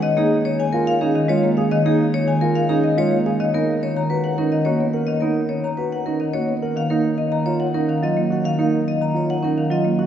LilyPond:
<<
  \new Staff \with { instrumentName = "Vibraphone" } { \time 3/4 \key fis \major \tempo 4 = 107 dis''16 gis'16 r16 cis''16 gis''16 ais'16 eis''16 gis'16 dis''16 cis''16 r16 eis''16 | dis''16 gis'16 r16 cis''16 gis''16 ais'16 eis''16 gis'16 dis''16 cis''16 r16 eis''16 | dis''16 ais'16 r16 cis''16 ais''16 b'16 fis''16 ais'16 dis''16 cis''16 r16 fis''16 | dis''16 ais'16 r16 cis''16 ais''16 b'16 fis''16 ais'16 dis''16 cis''16 r16 fis''16 |
eis''16 ais'16 r16 dis''16 ais''16 cis''16 fis''16 ais'16 eis''16 dis''16 r16 fis''16 | eis''16 ais'16 r16 dis''16 ais''16 cis''16 fis''16 ais'16 eis''16 dis''16 r16 fis''16 | }
  \new Staff \with { instrumentName = "Grand piano" } { \time 3/4 \key fis \major r16 dis'16 r8. eis'16 r16 dis'16 r16 eis'16 r16 gis'16 | r16 dis'16 r8. eis'16 r16 dis'16 r16 eis'16 r16 gis'16 | r16 dis'16 r8. fis'16 r16 dis'16 r16 fis'16 r16 ais'16 | r16 dis'16 r8. fis'16 r16 dis'16 r16 fis'16 r16 ais'16 |
r16 dis'16 r8. eis'16 r16 dis'16 r16 eis'16 r16 fis'16 | r16 dis'16 r8. eis'16 r16 dis'16 r16 eis'16 r16 fis'16 | }
  \new Staff \with { instrumentName = "Marimba" } { \clef bass \time 3/4 \key fis \major dis16 ais16 r8 dis16 r8 cis'16 dis16 gis16 ais16 r16 | dis16 ais16 r8 dis16 r8 cis'16 dis16 gis16 ais16 r16 | dis16 b16 r8 dis16 r8 cis'16 dis16 ais16 b16 r16 | dis16 b16 r8 dis16 r8 cis'16 dis16 ais16 b16 r16 |
dis16 ais16 r8 dis16 r8 cis'16 dis16 fis16 ais16 r16 | dis16 ais16 r8 dis16 r8 cis'16 dis16 fis16 ais16 r16 | }
>>